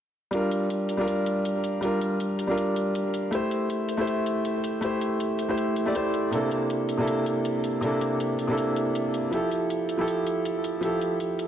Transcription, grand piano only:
0.31 0.96 G3 medium
0.31 0.97 D4 medium
0.31 0.97 F4 medium
0.31 0.98 A#4 medium
0.97 1.79 G3 medium
0.97 1.80 D4 medium
0.97 1.81 F4 medium
1.01 1.82 A#4 medium
1.81 2.46 G3 medium
1.81 2.46 D4 medium
1.81 2.47 F4 medium
1.81 2.48 A#4 medium
2.47 3.30 G3 medium
2.47 3.30 D4 medium
2.47 3.31 F4 medium
2.51 3.32 A#4 medium
3.31 3.96 A3 medium
3.31 3.96 E4 medium
3.31 3.97 G4 medium
3.35 3.98 C5 medium
3.97 4.79 A3 medium
3.97 4.80 E4 medium
3.97 4.81 G4 medium
3.97 4.82 C5 medium
4.81 5.46 A3 medium
4.81 5.47 E4 medium
4.81 5.47 G4 medium
4.81 5.48 C5 medium
5.48 5.84 A3 medium
5.48 5.85 E4 medium
5.48 5.85 G4 medium
5.48 5.85 C5 medium
5.86 5.93 A3 medium
5.86 5.93 E4 medium
5.86 5.93 G4 medium
5.86 5.94 D5 medium
5.94 6.30 A3 medium
5.94 6.31 E4 medium
5.94 6.31 G4 medium
5.94 6.31 C5 medium
6.31 6.96 C3 medium
6.31 6.96 A#3 medium
6.31 6.97 D4 medium
6.31 6.97 E4 medium
6.35 6.98 A4 medium
6.97 7.79 C3 medium
6.97 7.80 A#3 medium
6.97 7.81 D4 medium
6.97 7.81 E4 medium
7.01 7.82 A4 medium
7.81 8.46 C3 medium
7.81 8.46 A#3 medium
7.81 8.47 D4 medium
7.81 8.47 E4 medium
7.85 8.48 A4 medium
8.47 9.30 C3 medium
8.47 9.30 A#3 medium
8.47 9.31 D4 medium
8.47 9.31 E4 medium
8.47 9.32 A4 medium
9.31 9.96 F3 medium
9.31 9.97 E4 medium
9.31 9.97 G4 medium
9.31 9.98 A4 medium
9.97 10.79 F3 medium
9.97 10.80 E4 medium
9.97 10.81 G4 medium
9.97 10.82 A4 medium
10.81 11.46 F3 medium
10.81 11.46 E4 medium
10.81 11.47 G4 medium
10.81 11.48 A4 medium

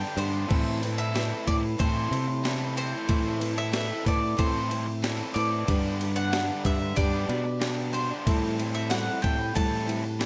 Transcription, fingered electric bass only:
0.17 0.44 G2 loud
0.50 1.31 A2 medium
1.48 1.75 A2 loud
1.80 2.07 A2 medium
2.11 2.93 C3 medium
3.09 3.90 A2 loud
4.06 4.33 A2 loud
4.39 5.20 A2 medium
5.36 5.63 A2 loud
5.68 6.50 G2 loud
6.65 6.92 G2 loud
6.98 7.25 G2 medium
7.29 8.11 B2 medium
8.27 9.08 A2 loud
9.24 9.51 A2 loud
9.56 10.26 A2 medium

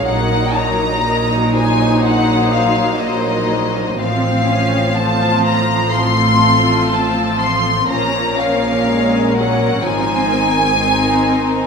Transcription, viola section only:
0.06 1.05 F#3 medium
0.06 1.04 D#4 medium
1.06 3.95 F#3 medium
1.06 2.98 D#4 medium
3.01 3.99 A#3 medium
3.99 6.87 F3 medium
3.99 4.47 C4 medium
4.47 4.96 C#4 medium
4.95 5.92 C4 medium
5.94 7.85 C4 medium
6.92 7.87 F3 medium
7.90 8.87 F3 medium
7.90 8.87 C#4 medium
8.89 9.37 G#3 medium
8.89 9.82 C#4 medium
9.37 9.84 F#3 medium
9.83 10.30 F3 medium
9.83 10.75 C4 medium
10.30 10.75 D#3 medium
10.76 11.67 D#3 medium
10.76 11.67 C4 medium

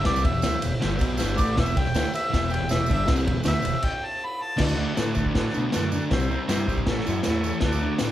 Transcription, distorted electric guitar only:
0.04 0.24 C3 medium
0.04 0.24 G3 loud
0.04 0.25 C4 loud
0.24 0.33 E2 medium
0.24 0.32 B2 loud
0.33 0.44 E2 medium
0.33 0.43 B2 medium
0.44 0.53 D3 loud
0.44 0.53 A3 loud
0.55 muted distorted electric guitar stroke medium
0.63 0.71 E2 medium
0.63 0.73 B2 medium
0.72 muted distorted electric guitar stroke medium
0.81 1.00 G2 loud
0.81 0.99 D3 medium
0.81 0.99 G3 loud
0.99 1.18 B2 medium
0.99 1.19 F#3 loud
0.99 1.19 B3 medium
1.18 1.37 G2 medium
1.18 1.36 D3 medium
1.18 1.37 G3 loud
1.36 1.56 A2 medium
1.36 1.56 E3 medium
1.36 1.57 A3 medium
1.56 1.75 E2 loud
1.56 1.75 B2 loud
1.56 1.76 E3 loud
1.77 1.85 C3 loud
1.77 1.86 G3 loud
1.85 1.95 E2 medium
1.85 1.95 B2 medium
1.95 2.04 D3 medium
1.95 2.05 A3 loud
2.03 muted distorted electric guitar stroke medium
2.30 2.58 E2 loud
2.30 2.59 B2 loud
2.30 2.60 E3 loud
2.60 2.68 E2 medium
2.60 2.69 B2 medium
2.69 2.78 E2 medium
2.69 2.78 B2 medium
2.79 2.89 E2 medium
2.79 2.89 B2 medium
2.89 3.08 G2 medium
2.89 3.06 D3 medium
2.89 3.07 G3 loud
3.07 3.25 C3 loud
3.07 3.27 G3 loud
3.07 3.27 C4 loud
3.25 3.34 E2 medium
3.25 3.34 B2 loud
3.35 3.46 E2 medium
3.35 3.43 B2 medium
3.44 3.54 D3 medium
3.44 3.55 A3 loud
3.53 muted distorted electric guitar stroke medium
3.61 3.72 E2 medium
3.61 3.73 B2 medium
3.73 muted distorted electric guitar stroke medium
4.57 4.74 D3 loud
4.57 4.75 A3 medium
4.57 4.76 D4 loud
4.75 4.93 D3 medium
4.75 4.92 A3 medium
4.75 4.93 D4 medium
4.93 5.13 D3 medium
4.93 5.14 A3 loud
4.93 5.14 D4 medium
5.14 5.33 D3 medium
5.14 5.33 A3 medium
5.14 5.34 D4 medium
5.34 5.53 D3 medium
5.34 5.53 A3 medium
5.34 5.54 D4 medium
5.54 5.70 D3 medium
5.54 5.70 A3 medium
5.54 5.71 D4 medium
5.71 5.91 D3 medium
5.71 5.92 A3 loud
5.71 5.92 D4 loud
5.92 6.09 D3 medium
5.92 6.10 A3 medium
5.92 6.10 D4 loud
6.10 6.28 C3 loud
6.10 6.29 G3 loud
6.10 6.29 C4 medium
6.30 6.47 C3 medium
6.30 6.47 G3 medium
6.30 6.48 C4 loud
6.48 6.66 C3 medium
6.48 6.67 G3 medium
6.48 6.68 C4 medium
6.68 6.85 C3 loud
6.68 6.86 G3 loud
6.68 6.86 C4 loud
6.87 7.04 A2 loud
6.87 7.06 E3 medium
6.87 7.06 A3 loud
7.06 7.23 A2 medium
7.06 7.24 E3 medium
7.06 7.24 A3 medium
7.24 7.43 A2 medium
7.24 7.42 E3 loud
7.24 7.44 A3 medium
7.44 7.61 A2 medium
7.44 7.61 E3 medium
7.44 7.62 A3 loud
7.62 7.80 D3 loud
7.62 7.81 A3 loud
7.62 7.82 D4 loud
7.81 7.98 D3 medium
7.81 7.99 A3 medium
7.81 8.00 D4 medium
8.00 8.12 D3 medium
8.00 8.12 A3 medium
8.00 8.12 D4 loud

